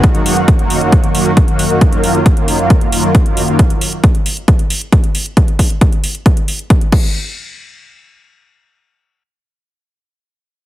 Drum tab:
CC |----------------|----------------|----------------|--------------x-|
HH |xxoxxxoxxxo-xxox|xxoxxxoxxxoxxxox|xxoxxxoxxxoxxxox|xxoxxxoxxxoxxx--|
BD |o---o---o---o---|o---o---o---o---|o---o---o---o---|o-o-o---o---o-o-|

CC |----------------|----------------|
HH |----------------|----------------|
BD |----------------|----------------|